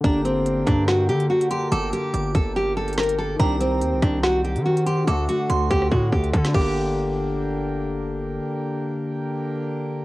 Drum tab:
CC |--------------------------------|--------------------------------|--------------------------------|----------------------------x---|
HH |x---x---x---x-------x-x---x-x---|x---x---x---x---------xxxxx-----|x---x---x---x-------x-x---x-x---|x---x---x---x---------x-x-x-----|
SD |------------r---o---------------|------------------------o-------|------------r---o---------------|------------r-r-----------o-----|
BD |o-----------o-------------------|------------o-------------------|o-----------o-------------------|------------o---o---o---o---o---|

CC |--------------------------------|--------------------------------|
HH |--------------------------------|--------------------------------|
SD |--------------------------------|--------------------------------|
BD |--------------------------------|--------------------------------|